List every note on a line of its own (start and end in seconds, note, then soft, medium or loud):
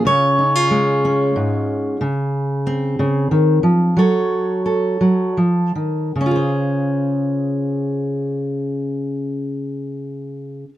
0.00 0.42 C#4 medium
0.00 0.38 F4 soft
0.05 1.34 C#3 medium
0.05 2.00 C#5 loud
0.39 0.55 D#4 soft
0.56 2.00 F4 soft
0.71 1.96 G#3 medium
1.05 1.97 C#4 soft
1.36 2.00 G#2 medium
2.01 2.98 C#3 medium
2.67 3.94 C4 soft
2.99 3.31 C#3 medium
3.31 3.63 D#3 medium
3.63 3.97 F3 medium
3.97 4.99 F#3 medium
3.97 4.64 A4 soft
3.97 6.11 C#5 medium
4.66 6.10 A4 soft
5.01 5.37 F#3 medium
5.37 5.75 F3 soft
5.75 6.15 D#3 soft
6.16 10.64 C#3 soft
6.21 10.69 C#4 soft
6.26 10.74 F4 soft
6.31 10.78 G#4 soft
6.36 10.78 C5 soft